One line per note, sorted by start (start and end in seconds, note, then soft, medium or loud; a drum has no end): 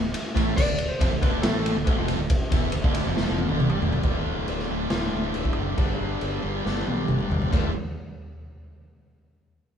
0.00 0.13 D1 medium
0.14 ride loud
0.35 0.56 A1 medium
0.35 0.56 A2 loud
0.35 0.56 A3 loud
0.35 kick loud
0.35 snare soft
0.35 ride medium
0.56 0.68 D1 loud
0.56 0.66 D2 loud
0.56 0.67 D3 loud
0.56 0.90 D5 loud
0.56 kick loud
0.56 crash loud
0.67 0.89 D1 medium
0.67 0.85 D2 medium
0.78 ride medium
0.89 1.22 C5 loud
0.99 1.10 F1 loud
0.99 1.10 F2 medium
0.99 1.10 F3 loud
0.99 kick loud
0.99 ride loud
1.10 1.21 D1 medium
1.10 1.19 D2 medium
1.21 1.43 D1 loud
1.21 1.42 D2 loud
1.21 1.42 D3 loud
1.21 1.41 B4 medium
1.21 kick loud
1.21 ride medium
1.41 1.74 A1 loud
1.41 1.74 A2 loud
1.41 1.75 A3 loud
1.41 3.55 A4 medium
1.41 snare loud
1.41 ride loud
1.66 ride medium
1.75 1.87 D1 medium
1.75 1.83 D2 medium
1.84 1.97 D1 loud
1.84 1.96 D2 loud
1.84 1.96 D3 loud
1.84 kick loud
1.84 ride loud
1.96 2.18 F1 medium
1.96 2.17 F2 loud
1.96 2.19 F3 loud
2.08 snare soft
2.08 ride medium
2.17 2.39 D1 medium
2.17 2.36 D2 medium
2.30 kick loud
2.30 ride loud
2.50 2.72 E1 loud
2.50 2.71 E2 loud
2.50 2.72 E3 loud
2.50 kick loud
2.50 ride medium
2.72 2.83 D1 medium
2.72 2.81 D2 medium
2.72 ride loud
2.83 3.04 D1 loud
2.83 3.04 D2 medium
2.83 3.04 D3 loud
2.83 kick loud
2.94 ride medium
3.04 3.16 F1 loud
3.04 3.14 F2 medium
3.04 3.15 F3 loud
3.15 3.28 E1 medium
3.15 3.26 E2 medium
3.15 3.26 E3 loud
3.15 snare medium
3.26 3.49 F1 medium
3.26 3.47 F2 medium
3.26 3.48 F3 loud
3.38 high tom medium
3.48 3.70 D1 loud
3.48 3.68 D2 medium
3.48 3.69 D3 loud
3.48 high tom medium
3.60 mid tom loud
3.69 3.82 G1 loud
3.69 3.80 G2 medium
3.69 3.81 G3 loud
3.80 4.03 D1 loud
3.80 4.01 D2 loud
3.80 4.02 D3 loud
3.80 floor tom loud
3.93 floor tom loud
4.03 4.21 D1 loud
4.03 4.87 D2 medium
4.03 4.88 A2 medium
4.03 4.88 D3 medium
4.03 4.89 A3 medium
4.03 4.89 F4 loud
4.03 kick loud
4.03 crash medium
4.27 4.43 D1 medium
4.48 4.64 D1 medium
4.48 crash medium
4.59 snare soft
4.68 4.86 D1 medium
4.68 5.76 D2 medium
4.68 5.76 A2 medium
4.68 5.76 D3 medium
4.89 5.08 D1 medium
4.89 5.75 D2 medium
4.89 5.75 A2 medium
4.89 5.75 D3 medium
4.89 5.76 A3 medium
4.89 5.76 F4 medium
4.89 snare loud
4.89 crash medium
5.14 5.30 D1 medium
5.34 5.52 D1 medium
5.34 crash medium
5.45 kick medium
5.56 5.73 F#1 medium
5.76 5.94 G1 medium
5.76 6.62 G2 loud
5.76 6.62 D3 loud
5.76 6.63 G3 loud
5.76 6.63 B3 medium
5.76 6.63 D4 loud
5.76 6.63 G4 loud
5.76 kick loud
5.76 crash medium
6.01 6.17 G1 loud
6.21 6.38 G1 medium
6.21 crash medium
6.42 6.60 G1 medium
6.42 7.50 G2 medium
6.42 7.50 D3 medium
6.42 7.49 G3 medium
6.64 6.82 G1 loud
6.64 7.50 G2 medium
6.64 7.50 D3 medium
6.64 7.50 G3 medium
6.64 7.50 B3 medium
6.64 7.51 D4 medium
6.64 7.51 G4 medium
6.64 snare medium
6.87 7.03 B1 medium
6.87 high tom medium
7.08 7.25 G1 medium
7.08 mid tom medium
7.20 mid tom medium
7.30 7.46 G1 medium
7.30 floor tom medium
7.42 floor tom medium
7.50 7.72 D1 loud
7.50 7.68 D2 medium
7.50 7.68 A2 loud
7.50 7.69 D3 loud
7.50 7.69 A3 loud
7.50 7.69 F4 loud
7.50 kick loud
7.50 floor tom loud
7.50 crash medium